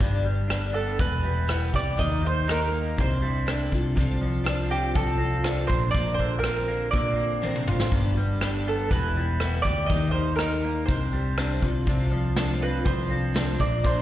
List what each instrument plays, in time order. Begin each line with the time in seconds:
0.00 picked electric bass G1, twelve-string acoustic guitar G2 D3 G3 B3 D4 G4, kick, closed hi-hat
0.25 clean electric guitar G3, twelve-string acoustic guitar B3 D4 G4
0.50 twelve-string acoustic guitar G2 D3 G3 B3 D4 G4, cross-stick, closed hi-hat
0.74 twelve-string acoustic guitar G3 B3 D4 G4, mandolin A4
0.99 picked electric bass E1, clean electric guitar E2, twelve-string acoustic guitar G3 B3 E4 G4, mandolin B4, kick, closed hi-hat
1.22 clean electric guitar G3, twelve-string acoustic guitar B3 E4 G4
1.47 twelve-string acoustic guitar E3 G3 B3 E4 G4, cross-stick, closed hi-hat
1.72 picked electric bass C2, twelve-string acoustic guitar B3 E4 G4, mandolin D5, kick
1.97 picked electric bass D#2, twelve-string acoustic guitar D#3 G3 A#3 D#4 G4, mandolin D#5, kick, closed hi-hat
2.22 clean electric guitar D#3, twelve-string acoustic guitar A#3 D#4 G4
2.26 mandolin C5
2.47 twelve-string acoustic guitar D#3 G3 A#3 D#4 G4, mandolin A#4, cross-stick, closed hi-hat
2.71 twelve-string acoustic guitar A#3 D#4 G4
2.96 picked electric bass C2, clean electric guitar C3, twelve-string acoustic guitar G3 D4 E4 G4, mandolin C5, kick, closed hi-hat
3.22 clean electric guitar G3, twelve-string acoustic guitar D4 E4 G4
3.47 twelve-string acoustic guitar C3 G3 D4 E4 G4, cross-stick, closed hi-hat
3.70 picked electric bass C2, clean electric guitar C3, twelve-string acoustic guitar D4 F4 A4, kick
3.96 picked electric bass C2, twelve-string acoustic guitar C3 F3 D4 F4 A4, kick, closed hi-hat
4.20 clean electric guitar F3, twelve-string acoustic guitar D4 F4 A4
4.44 twelve-string acoustic guitar C3 F3 D4 F4 A4, cross-stick, closed hi-hat
4.68 clean electric guitar C4, twelve-string acoustic guitar D4 F4 A4, mandolin G4
4.94 picked electric bass C2, twelve-string acoustic guitar F3 D4 F4 A4, mandolin A4, kick, closed hi-hat
5.18 clean electric guitar C4, twelve-string acoustic guitar F4 A4
5.22 twelve-string acoustic guitar D4
5.44 twelve-string acoustic guitar C3 F3 D4 F4 A4, cross-stick, closed hi-hat
5.67 picked electric bass A#1, clean electric guitar A#2, twelve-string acoustic guitar A#4, mandolin C5, kick
5.71 twelve-string acoustic guitar F3 C4
5.91 picked electric bass A#1, twelve-string acoustic guitar A#2, mandolin D5, kick, closed hi-hat
5.95 twelve-string acoustic guitar D3 F3 C4 D4 A#4
6.14 mandolin C5
6.19 clean electric guitar D3, twelve-string acoustic guitar F3 C4 D4 A#4, kick
6.39 mandolin A#4
6.44 twelve-string acoustic guitar A#2 D3 F3 C4 D4 A#4, cross-stick, closed hi-hat
6.68 twelve-string acoustic guitar F3 C4 D4 A#4, clean electric guitar A#3
6.91 picked electric bass A#2, clean electric guitar D3, twelve-string acoustic guitar F3 C4, mandolin D5, kick, closed hi-hat
6.95 twelve-string acoustic guitar D4 A#4
7.16 clean electric guitar A#3, twelve-string acoustic guitar D4 A#4
7.20 twelve-string acoustic guitar F3 C4
7.42 twelve-string acoustic guitar A#2 D3 F3 C4 D4 A#4, high tom
7.56 mid tom
7.67 picked electric bass A1, twelve-string acoustic guitar F3 C4 D4 A#4, clean electric guitar F4, mid tom
7.80 snare
7.91 picked electric bass G1, twelve-string acoustic guitar G2 D3 G3 B3 D4 G4, kick, closed hi-hat
8.15 twelve-string acoustic guitar G3 B3 D4 G4
8.40 twelve-string acoustic guitar G2 D3 G3 B3 D4 G4, cross-stick, closed hi-hat
8.65 twelve-string acoustic guitar G3 B3 D4 G4, mandolin A4
8.89 picked electric bass E1, clean electric guitar E2, twelve-string acoustic guitar G3 B3 E4 G4, mandolin B4, kick, closed hi-hat
9.16 clean electric guitar G3, twelve-string acoustic guitar B3 E4 G4
9.40 twelve-string acoustic guitar E3 G3 B3 E4 G4, cross-stick, closed hi-hat
9.62 picked electric bass D2, twelve-string acoustic guitar G4, mandolin D5, kick
9.66 twelve-string acoustic guitar B3 E4
9.86 picked electric bass D#2, twelve-string acoustic guitar D#3 A#3, mandolin D#5, kick, closed hi-hat
9.91 twelve-string acoustic guitar G3 D#4 G4
10.11 clean electric guitar D#3, twelve-string acoustic guitar G4, mandolin C5
10.15 twelve-string acoustic guitar A#3 D#4
10.36 mandolin A#4, cross-stick, closed hi-hat
10.40 twelve-string acoustic guitar D#3 G3 A#3 D#4 G4
10.64 twelve-string acoustic guitar A#3 D#4 G4
10.86 picked electric bass C2, clean electric guitar C3, twelve-string acoustic guitar G3 C4, mandolin C5, kick, closed hi-hat
10.91 twelve-string acoustic guitar D4 G4
11.12 twelve-string acoustic guitar G3 C4 D4 G4
11.38 twelve-string acoustic guitar C3 E3 G3 C4 D4 G4, cross-stick, closed hi-hat
11.61 picked electric bass C2, clean electric guitar C3, twelve-string acoustic guitar D4 F4 A4, kick
11.86 picked electric bass C2, twelve-string acoustic guitar C3 F3 D4 F4 A4, kick, closed hi-hat
12.09 clean electric guitar F3, twelve-string acoustic guitar D4 F4 A4
12.36 twelve-string acoustic guitar C3 F3 D4 F4 A4, snare, closed hi-hat
12.60 clean electric guitar C4, twelve-string acoustic guitar D4 F4 A4, mandolin B4
12.84 picked electric bass C2, twelve-string acoustic guitar F3 D4 F4 A4, mandolin C5, kick, closed hi-hat
13.08 clean electric guitar C4, twelve-string acoustic guitar D4 F4 A4
13.32 twelve-string acoustic guitar C3 F3 D4 F4 A4, snare, closed hi-hat
13.59 picked electric bass A#1, clean electric guitar A#2, twelve-string acoustic guitar F3 C4 D4 A#4, mandolin D5, kick
13.83 picked electric bass A#1, twelve-string acoustic guitar A#2 D3 F3 C4 D4 A#4, mandolin C5, kick, closed hi-hat